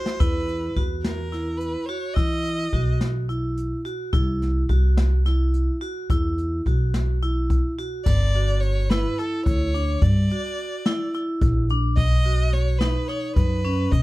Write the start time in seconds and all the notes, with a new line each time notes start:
Already playing: F#4 C5
0.06 snare
0.20 E2 E4 B4, kick, closed hi-hat
0.48 closed hi-hat
0.76 E2 F#4, kick, closed hi-hat
1.03 A#4, snare, closed hi-hat
1.32 E4, snare, closed hi-hat
1.57 B4, closed hi-hat
1.86 F#4 C#5, closed hi-hat
2.13 E3 E4 D#5, kick, closed hi-hat
2.45 closed hi-hat
2.73 B1 F#4, kick, closed hi-hat
3.01 snare, closed hi-hat
3.29 E4, closed hi-hat
3.57 closed hi-hat
3.85 F#4, closed hi-hat
4.13 C2 E4, kick, closed hi-hat
4.42 snare, closed hi-hat
4.69 C2 F#4, kick, closed hi-hat
4.97 snare, closed hi-hat
5.26 E4, snare, closed hi-hat
5.54 closed hi-hat
5.81 F#4, closed hi-hat
6.10 E2 E4, kick, closed hi-hat
6.38 closed hi-hat
6.66 B1 F#4, kick, closed hi-hat
6.94 snare, closed hi-hat
7.22 E4, closed hi-hat
7.50 kick, closed hi-hat
7.79 F#4, closed hi-hat
8.05 G1 D5, kick, crash
8.34 F#4, closed hi-hat
8.60 C#5, closed hi-hat
8.89 E4 B4, snare, closed hi-hat
9.19 E4 A4, closed hi-hat
9.46 D2 C#5, kick, closed hi-hat
9.74 D4, closed hi-hat
10.01 G2 D5, kick, closed hi-hat
10.30 F#4, closed hi-hat
10.58 closed hi-hat
10.86 E4, snare, closed hi-hat
11.14 E4, closed hi-hat
11.42 A#1, kick, closed hi-hat
11.69 D4, closed hi-hat
11.97 B1 D#5, kick, closed hi-hat
12.25 F#4, closed hi-hat
12.53 C#5, snare, closed hi-hat
12.79 D#4 B4, snare, closed hi-hat
13.08 D#4 C#5, closed hi-hat
13.36 F#2 B4, kick, closed hi-hat
13.64 C#4, closed hi-hat
13.91 B2 D#5, kick, closed hi-hat